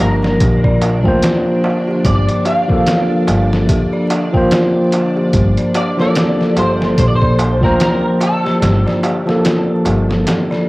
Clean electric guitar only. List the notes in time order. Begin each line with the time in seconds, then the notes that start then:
0.00 A#4
2.05 D5
2.46 F5
3.49 E5
5.76 D5
6.00 D5
6.58 C5
6.99 C5
7.08 D5
7.15 C5
7.64 A#4
7.81 A#4
8.22 A4
10.02 G4